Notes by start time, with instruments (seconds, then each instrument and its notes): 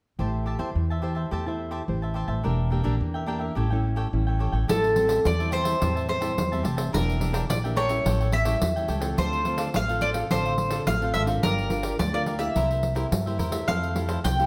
0.19 upright bass A1, nylon-string guitar A3 E4 G4 C5, cavaquinho G4 C5 E5 A5
0.46 cavaquinho G4 C5 E5 A5
0.58 upright bass E2, nylon-string guitar E4 G4 C5, cavaquinho G4 C5 E5 A5
0.75 upright bass E2, nylon-string guitar E3
0.90 cavaquinho C5 E5 A5
1.02 nylon-string guitar E4 G4 C5, cavaquinho G4 C5 E5 A5
1.15 cavaquinho C5 E5 A5
1.31 upright bass E2, nylon-string guitar A3, cavaquinho G4 C5 E5 A5
1.46 nylon-string guitar E4 G4 C5, cavaquinho C5 E5 A5
1.71 cavaquinho G4 C5 E5 A5
1.88 upright bass A1, nylon-string guitar E3 E4 G4 C5
2.02 cavaquinho C5 E5 A5
2.14 cavaquinho G4 C5 E5 A5
2.28 upright bass A1, cavaquinho C5 E5 A5
2.43 upright bass E1, nylon-string guitar E3 A#3 D4 G4, cavaquinho D4 A#4 E5 G5
2.70 nylon-string guitar A#3 D4 G4, cavaquinho D4 A#4 E5 G5
2.83 upright bass A#1, nylon-string guitar A#3 D4 G4, cavaquinho D4 A#4 E5 G5
3.01 upright bass E2, nylon-string guitar E3
3.14 cavaquinho A#4 E5 G5
3.26 nylon-string guitar A#3 D4 G4, cavaquinho D4 A#4 E5 G5
3.39 cavaquinho A#4 E5 G5
3.55 upright bass A1, nylon-string guitar A2 G3 C#4 E4, cavaquinho G4 A4 C#5 G5
3.70 nylon-string guitar G3 C#4 E4, cavaquinho A4 C#5 G5
3.96 cavaquinho G4 A4 C#5 G5
4.13 upright bass A1, nylon-string guitar E3 G3 C#4 E4
4.27 cavaquinho A4 C#5 G5
4.39 cavaquinho G4 A4 C#5 G5
4.52 upright bass A1, cavaquinho A4 C#5 G5
4.68 upright bass A1, nylon-string guitar A2 G3 C4 E4, cavaquinho G4 C5 E5 A5, mandolin A4, pandeiro
4.84 pandeiro
4.95 nylon-string guitar G3 C4 E4, cavaquinho G4 C5 E5 A5, pandeiro
5.07 cavaquinho G4 C5 E5 A5, pandeiro
5.25 upright bass E2, nylon-string guitar E3, mandolin D5, pandeiro
5.39 nylon-string guitar G3 C4 E4, cavaquinho C5 E5 A5, pandeiro
5.51 cavaquinho G4 C5 E5 A5, mandolin C5, pandeiro
5.64 nylon-string guitar G3 C4 E4, cavaquinho C5 E5 A5, pandeiro
5.80 upright bass E2, nylon-string guitar A2 G3 C4 E4, cavaquinho G4 C5 E5 A5, pandeiro
5.95 cavaquinho C5 E5 A5, pandeiro
6.09 mandolin C5, pandeiro
6.21 nylon-string guitar G3 C4 E4, cavaquinho G4 C5 E5 A5, pandeiro
6.38 upright bass E2, nylon-string guitar E3, pandeiro
6.52 nylon-string guitar G3 C4 E4, cavaquinho C5 E5 A5, pandeiro
6.63 upright bass F1, cavaquinho G4 C5 E5 A5, pandeiro
6.77 cavaquinho C5 E5 A5, pandeiro
6.92 upright bass E1, nylon-string guitar E3 A#3 D4 G4, cavaquinho D4 A#4 E5 G5, mandolin A#4, pandeiro
7.09 pandeiro
7.20 nylon-string guitar A#3 D4 G4, cavaquinho D4 A#4 E5 G5, pandeiro
7.33 cavaquinho D4 A#4 E5 G5, pandeiro
7.50 upright bass A#1, nylon-string guitar E3, mandolin D5, pandeiro
7.64 nylon-string guitar A#3 D4 G4, cavaquinho A#4 E5 G5, pandeiro
7.76 cavaquinho D4 A#4 E5 G5, mandolin C#5, pandeiro
7.89 nylon-string guitar G3 C#4 E4, cavaquinho A#4 E5 G5, pandeiro
8.05 upright bass A1, nylon-string guitar A2, cavaquinho G4 A4 C#5 G5, pandeiro
8.20 cavaquinho A4 C#5 G5, pandeiro
8.32 mandolin E5, pandeiro
8.45 nylon-string guitar G3 C#4 E4, cavaquinho G4 A4 C#5 G5, pandeiro
8.62 upright bass E2, nylon-string guitar E3, pandeiro
8.76 nylon-string guitar G3 C#4 E4, cavaquinho A4 C#5 G5, pandeiro
8.88 upright bass C#2, cavaquinho G4 A4 C#5 G5, pandeiro
9.01 nylon-string guitar C4 F4 A4, cavaquinho A4 C#5 G5, pandeiro
9.17 upright bass D2, nylon-string guitar D3, cavaquinho D4 A4 C5 F5, mandolin C5, pandeiro
9.33 pandeiro
9.45 nylon-string guitar C4 F4 A4, cavaquinho D4 A4 C5 F5, pandeiro
9.57 cavaquinho D4 A4 C5 F5, pandeiro
9.74 upright bass A1, nylon-string guitar A2, mandolin F5, pandeiro
9.89 nylon-string guitar C4 F4 A4, cavaquinho A4 C5 F5, pandeiro
10.01 cavaquinho D4 A4 C5 F5, mandolin D5, pandeiro
10.14 nylon-string guitar C4 F4 A4, cavaquinho A4 C5 F5, pandeiro
10.31 upright bass A1, nylon-string guitar D3 C4 F4 A4, cavaquinho D4 A4 C5 F5, mandolin C5, pandeiro
10.45 cavaquinho A4 C5 F5, pandeiro
10.58 pandeiro
10.70 nylon-string guitar C4 F4 A4, cavaquinho D4 A4 C5 F5, pandeiro
10.86 upright bass A1, nylon-string guitar A2, mandolin F5, pandeiro
11.01 nylon-string guitar C4 F4 A4, cavaquinho A4 C5 F5, pandeiro
11.14 upright bass G#1, cavaquinho D4 A4 C5 F5, mandolin E5, pandeiro
11.27 nylon-string guitar D4 F4 A#4, cavaquinho A4 C5 F5, pandeiro
11.43 upright bass G1, nylon-string guitar G3, cavaquinho G4 A#4 D5 F5, mandolin A#4, pandeiro
11.59 pandeiro
11.70 nylon-string guitar D4 F4 A#4, cavaquinho G4 A#4 D5 F5, pandeiro
11.83 cavaquinho G4 A#4 D5 F5, pandeiro
11.99 upright bass D2, nylon-string guitar D3, mandolin D5, pandeiro
12.14 nylon-string guitar D4 F4 A#4, cavaquinho A#4 D5 F5, mandolin D5, pandeiro
12.26 cavaquinho G4 A#4 D5 F5, pandeiro
12.39 nylon-string guitar A#3 E4 G4, cavaquinho A#4 D5 F5, mandolin E5, pandeiro
12.55 upright bass C2, nylon-string guitar C3, cavaquinho E4 A#4 C5 E5, pandeiro
12.71 cavaquinho A#4 C5 E5, pandeiro
12.83 pandeiro
12.95 nylon-string guitar A#3 E4 G4, cavaquinho E4 A#4 C5 E5, pandeiro
13.12 upright bass G2, nylon-string guitar G2, pandeiro
13.26 nylon-string guitar A#3 E4 G4, cavaquinho A#4 C5 E5, pandeiro
13.38 upright bass E2, cavaquinho E4 A#4 C5 E5, pandeiro
13.51 nylon-string guitar A3 E4 G4, cavaquinho A#4 C5 E5, pandeiro
13.68 upright bass F2, nylon-string guitar F3, cavaquinho E4 A4 C5 F5, mandolin F5, pandeiro
13.83 pandeiro
13.95 nylon-string guitar A3 E4 G4, cavaquinho E4 A4 C5 F5, pandeiro
14.08 cavaquinho E4 A4 C5 F5, pandeiro
14.24 upright bass C2, nylon-string guitar C3, mandolin G5, pandeiro
14.39 nylon-string guitar A3 E4 G4, cavaquinho A4 C5 F5, pandeiro